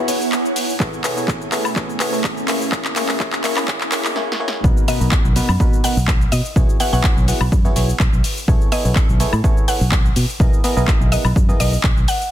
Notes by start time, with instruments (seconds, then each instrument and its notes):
Already playing: ambient pad B3 E4 C#5 F#5 G#5
0.08 fm electric piano B3 E4 F#4 G#4 C#5, open hi-hat, shaker
0.21 shaker
0.32 clap, shaker
0.45 shaker
0.56 ambient pad B2, open hi-hat, shaker
0.70 shaker
0.80 fm electric piano B3 E4 G#4 A4 C#5, kick, clap, shaker
0.87 ambient pad A3
0.93 shaker
1.04 fm electric piano B3 E4 G#4 A4 C#5, clap, open hi-hat, shaker
1.17 fm electric piano B3 E4 G#4 A4 C#5, ambient pad C#4, shaker
1.28 kick, clap, shaker
1.42 shaker
1.52 fm electric piano B3 E4 G#4 A4 C#5, clap, open hi-hat, shaker
1.65 high woodblock, shaker
1.76 fm electric piano B3 E4 G#4 A4 C#5, kick, clap, shaker
1.90 shaker
2.00 fm electric piano B3 E4 G#4 A4 C#5, clap, open hi-hat, shaker
2.13 fm electric piano B3 E4 G#4 A4 C#5, shaker
2.24 kick, clap, shaker
2.37 shaker
2.48 fm electric piano A#3 E4 G#4 C#5, ambient pad B3, clap, open hi-hat, shaker
2.61 shaker
2.72 fm electric piano A#3 E4 G#4 C#5, ambient pad E4, kick, clap, shaker
2.85 clap, shaker
2.96 fm electric piano A#3 E4 G#4 C#5, clap, open hi-hat, shaker
3.09 fm electric piano A#3 E4 G#4 C#5, clap, shaker
3.18 fm electric piano A#3 E4 G#4 C#5, ambient pad A#4, kick, clap, shaker
3.33 clap, shaker
3.44 fm electric piano A#3 E4 G#4 C#5, clap, open hi-hat, shaker
3.57 fm electric piano A#3 E4 G#4 C#5, clap, high woodblock, shaker
3.68 kick, clap, shaker
3.81 clap, shaker
3.92 fm electric piano A#3 E4 G#4 C#5, clap, open hi-hat, shaker
4.05 clap, shaker
4.16 fm electric piano A#3 E4 G#4 C#5, snare
4.32 snare
4.40 fm electric piano A#3 E4 G#4 C#5
4.48 snare
4.64 fingered electric bass B1, fm electric piano B2 D#4 F#4 A#4 B4, kick, shaker
4.77 shaker
4.88 fm electric piano B2 D#4 F#4 A#4 B4, synth pluck D#5, open hi-hat, shaker
5.01 fingered electric bass B1, fm electric piano B2 D#4 F#4 A#4 B4, shaker
5.12 kick, clap, shaker
5.25 fingered electric bass B1, shaker
5.36 fm electric piano B2 D#4 F#4 A#4 B4, open hi-hat, shaker
5.49 fingered electric bass F#2, high woodblock, shaker
5.60 fm electric piano B2 D#4 F#4 A#4 B4, kick, shaker
5.73 shaker
5.84 fm electric piano B2 D#4 F#4 A#4 B4, synth pluck F#5, open hi-hat, shaker
5.97 fingered electric bass B1, shaker
6.08 kick, clap, shaker
6.21 shaker
6.32 fingered electric bass B2, synth pluck D#5, open hi-hat, shaker
6.45 shaker
6.56 fingered electric bass B1, fm electric piano B3 E4 F#4 G#4 C#5, kick, shaker
6.69 shaker
6.80 fm electric piano B3 E4 F#4 G#4 C#5, synth pluck F#5, open hi-hat, shaker
6.93 fingered electric bass B1, fm electric piano B3 E4 F#4 G#4 C#5, synth pluck F#5, shaker
7.04 kick, clap, shaker
7.17 fingered electric bass B1, shaker
7.28 fm electric piano B3 E4 F#4 G#4 F#5, open hi-hat, shaker
7.41 fingered electric bass B1, high woodblock, shaker
7.52 fingered electric bass F#2, kick, shaker
7.65 fm electric piano B3 E4 F#4 G#4 C#5, shaker
7.76 fingered electric bass B1, fm electric piano B3 E4 F#4 G#4 C#5, open hi-hat, shaker
7.89 shaker
8.00 fingered electric bass B1, kick, clap, shaker
8.13 fingered electric bass B1, shaker
8.24 open hi-hat, shaker
8.37 shaker
8.48 fingered electric bass B1, fm electric piano B3 E4 G#4 A4 C#5, kick, shaker
8.61 shaker
8.72 fm electric piano B3 E4 G#4 A4 C#5, synth pluck D#5, open hi-hat, shaker
8.85 fingered electric bass B1, fm electric piano B3 E4 G#4 A4 C#5, shaker
8.96 kick, clap, shaker
9.09 fingered electric bass B1, shaker
9.20 fm electric piano B3 E4 G#4 A4 C#5, open hi-hat, shaker
9.33 fingered electric bass A2, high woodblock, shaker
9.44 fm electric piano B3 E4 G#4 A4 C#5, kick, shaker
9.57 shaker
9.68 fm electric piano B3 E4 G#4 A4 C#5, synth pluck F#5, open hi-hat, shaker
9.81 fingered electric bass B1, shaker
9.92 kick, clap, shaker
10.05 shaker
10.16 fingered electric bass B2, open hi-hat, shaker
10.29 shaker
10.40 fingered electric bass B1, fm electric piano B3 E4 G#4 A#4 D#5, kick, shaker
10.53 shaker
10.64 fm electric piano B3 E4 G#4 A#4 D#5, open hi-hat, shaker
10.77 fingered electric bass B1, fm electric piano B3 E4 G#4 A#4 D#5, shaker
10.88 kick, clap, shaker
11.01 fingered electric bass B1, shaker
11.12 fm electric piano B3 E4 G#4 A#4 F#5, synth pluck D#5, open hi-hat, shaker
11.25 fingered electric bass B1, high woodblock, shaker
11.36 fingered electric bass F#2, kick, shaker
11.49 fm electric piano B3 E4 G#4 A#4 D#5, shaker
11.60 fingered electric bass B1, fm electric piano B3 E4 G#4 A#4 D#5, synth pluck D#5, open hi-hat, shaker
11.73 shaker
11.84 fingered electric bass B1, kick, clap, shaker
11.97 fingered electric bass B1, shaker
12.08 synth pluck F#5, open hi-hat, shaker
12.21 shaker